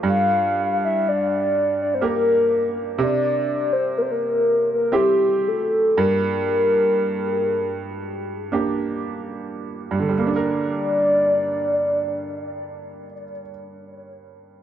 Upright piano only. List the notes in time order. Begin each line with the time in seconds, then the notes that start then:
0.03 G2
2.01 A#3 G4 A#4
2.98 C3
4.92 C4 E4 G4
5.98 G2
8.52 A#3 D4 G4
9.91 G2
10.00 D3
10.09 G3
10.18 A#3
10.27 D4
10.36 A#4